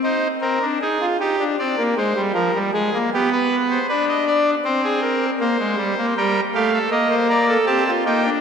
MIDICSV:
0, 0, Header, 1, 2, 480
1, 0, Start_track
1, 0, Key_signature, -3, "minor"
1, 0, Tempo, 764331
1, 23, Time_signature, 4, 2, 24, 8
1, 5280, End_track
2, 0, Start_track
2, 0, Title_t, "Pipe organ"
2, 0, Program_c, 0, 19
2, 19, Note_on_c, 0, 72, 75
2, 20, Note_on_c, 0, 63, 60
2, 172, Note_off_c, 0, 72, 0
2, 173, Note_off_c, 0, 63, 0
2, 258, Note_on_c, 0, 70, 72
2, 260, Note_on_c, 0, 60, 62
2, 368, Note_off_c, 0, 60, 0
2, 386, Note_on_c, 0, 62, 59
2, 412, Note_off_c, 0, 70, 0
2, 492, Note_off_c, 0, 62, 0
2, 511, Note_on_c, 0, 68, 72
2, 514, Note_on_c, 0, 63, 65
2, 617, Note_off_c, 0, 63, 0
2, 633, Note_on_c, 0, 65, 56
2, 660, Note_off_c, 0, 68, 0
2, 736, Note_off_c, 0, 65, 0
2, 752, Note_on_c, 0, 63, 60
2, 754, Note_on_c, 0, 67, 79
2, 856, Note_off_c, 0, 63, 0
2, 875, Note_on_c, 0, 62, 57
2, 903, Note_off_c, 0, 67, 0
2, 978, Note_off_c, 0, 62, 0
2, 997, Note_on_c, 0, 74, 69
2, 1001, Note_on_c, 0, 60, 53
2, 1102, Note_off_c, 0, 60, 0
2, 1118, Note_on_c, 0, 58, 56
2, 1146, Note_off_c, 0, 74, 0
2, 1220, Note_off_c, 0, 58, 0
2, 1235, Note_on_c, 0, 56, 57
2, 1239, Note_on_c, 0, 72, 71
2, 1339, Note_off_c, 0, 56, 0
2, 1353, Note_on_c, 0, 55, 59
2, 1387, Note_off_c, 0, 72, 0
2, 1458, Note_off_c, 0, 55, 0
2, 1468, Note_on_c, 0, 53, 73
2, 1471, Note_on_c, 0, 70, 78
2, 1575, Note_off_c, 0, 53, 0
2, 1598, Note_on_c, 0, 55, 51
2, 1622, Note_off_c, 0, 70, 0
2, 1701, Note_off_c, 0, 55, 0
2, 1717, Note_on_c, 0, 56, 60
2, 1717, Note_on_c, 0, 68, 74
2, 1820, Note_off_c, 0, 56, 0
2, 1843, Note_on_c, 0, 58, 55
2, 1867, Note_off_c, 0, 68, 0
2, 1944, Note_off_c, 0, 58, 0
2, 1968, Note_on_c, 0, 59, 62
2, 1971, Note_on_c, 0, 67, 79
2, 2069, Note_off_c, 0, 67, 0
2, 2085, Note_on_c, 0, 71, 77
2, 2233, Note_off_c, 0, 71, 0
2, 2323, Note_on_c, 0, 72, 68
2, 2378, Note_off_c, 0, 59, 0
2, 2425, Note_off_c, 0, 72, 0
2, 2442, Note_on_c, 0, 71, 77
2, 2444, Note_on_c, 0, 62, 67
2, 2544, Note_off_c, 0, 71, 0
2, 2567, Note_on_c, 0, 75, 76
2, 2667, Note_off_c, 0, 75, 0
2, 2679, Note_on_c, 0, 74, 79
2, 2828, Note_off_c, 0, 74, 0
2, 2855, Note_off_c, 0, 62, 0
2, 2916, Note_on_c, 0, 72, 83
2, 2919, Note_on_c, 0, 60, 65
2, 3020, Note_off_c, 0, 72, 0
2, 3038, Note_on_c, 0, 68, 78
2, 3142, Note_off_c, 0, 68, 0
2, 3151, Note_on_c, 0, 70, 75
2, 3301, Note_off_c, 0, 70, 0
2, 3330, Note_off_c, 0, 60, 0
2, 3392, Note_on_c, 0, 58, 85
2, 3393, Note_on_c, 0, 72, 96
2, 3497, Note_off_c, 0, 58, 0
2, 3512, Note_on_c, 0, 56, 62
2, 3616, Note_off_c, 0, 56, 0
2, 3627, Note_on_c, 0, 55, 64
2, 3733, Note_off_c, 0, 55, 0
2, 3752, Note_on_c, 0, 58, 58
2, 3804, Note_off_c, 0, 72, 0
2, 3855, Note_off_c, 0, 58, 0
2, 3874, Note_on_c, 0, 55, 66
2, 3875, Note_on_c, 0, 79, 84
2, 3876, Note_on_c, 0, 70, 71
2, 4021, Note_off_c, 0, 55, 0
2, 4021, Note_off_c, 0, 79, 0
2, 4022, Note_off_c, 0, 70, 0
2, 4111, Note_on_c, 0, 67, 65
2, 4111, Note_on_c, 0, 77, 78
2, 4112, Note_on_c, 0, 57, 65
2, 4213, Note_off_c, 0, 67, 0
2, 4229, Note_on_c, 0, 69, 63
2, 4258, Note_off_c, 0, 77, 0
2, 4259, Note_off_c, 0, 57, 0
2, 4331, Note_off_c, 0, 69, 0
2, 4339, Note_on_c, 0, 58, 67
2, 4340, Note_on_c, 0, 75, 87
2, 4341, Note_on_c, 0, 70, 70
2, 4446, Note_off_c, 0, 70, 0
2, 4459, Note_on_c, 0, 72, 60
2, 4490, Note_off_c, 0, 75, 0
2, 4565, Note_off_c, 0, 72, 0
2, 4580, Note_on_c, 0, 70, 79
2, 4581, Note_on_c, 0, 74, 90
2, 4685, Note_off_c, 0, 70, 0
2, 4701, Note_on_c, 0, 69, 62
2, 4731, Note_off_c, 0, 74, 0
2, 4754, Note_off_c, 0, 58, 0
2, 4806, Note_off_c, 0, 69, 0
2, 4813, Note_on_c, 0, 67, 66
2, 4813, Note_on_c, 0, 81, 84
2, 4814, Note_on_c, 0, 60, 61
2, 4921, Note_off_c, 0, 67, 0
2, 4945, Note_on_c, 0, 65, 64
2, 4965, Note_off_c, 0, 81, 0
2, 4966, Note_off_c, 0, 60, 0
2, 5048, Note_off_c, 0, 65, 0
2, 5055, Note_on_c, 0, 58, 76
2, 5059, Note_on_c, 0, 63, 65
2, 5061, Note_on_c, 0, 79, 78
2, 5164, Note_off_c, 0, 63, 0
2, 5176, Note_on_c, 0, 62, 62
2, 5206, Note_off_c, 0, 58, 0
2, 5210, Note_off_c, 0, 79, 0
2, 5280, Note_off_c, 0, 62, 0
2, 5280, End_track
0, 0, End_of_file